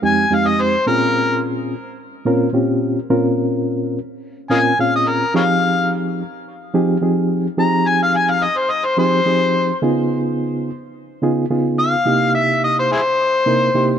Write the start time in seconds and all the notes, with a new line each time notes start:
0.02 F2 G#3 C4 D#4 G4 G#5
0.30 F2 G#3 C4 D#4 G4 F5
0.47 D#5
0.61 C5
0.86 A#2 C4 C#4 F4 G#4 A#4
2.26 A#2 C4 C#4 F4 A#4
2.53 A#2 C4 C#4 F4 G4
3.10 A#2 C4 C#4 F4 A#4
4.50 A#2 C4 C#4 F4 A#4 D#5 F5 G#5
4.79 A#2 C4 C#4 F4 G#4 F5
4.95 D#5
5.08 A#4
5.34 F3 C4 D#4 G4 G#4 A#4 C#5 F5
6.74 F3 C4 D#4 G4 G#4
7.01 F3 C4 D#4 G4 G#4
7.57 F3 C4 D#4 G4 G#4 A#5
7.88 G#5
8.03 F5
8.16 G#5
8.30 F5
8.43 D#5
8.57 C5
8.70 D#5
8.85 C5
8.97 F3 C4 D#4 G4 G#4 C5
9.26 F3 C4 D#4 G4 G#4
9.82 C#3 B3 D#4 F4 G#4
11.22 C#3 B3 D#4 F4 G#4
11.50 C#3 B3 D#4 F4 G#4
11.79 F5
12.06 C3 A#3 D#4 E4 G4
12.34 E5
12.64 D#5
12.79 C5
12.92 E4 G#4 C5
13.46 C3 A#3 D#4 E4 A#4
13.74 C3 A#3 D#4 E4 G4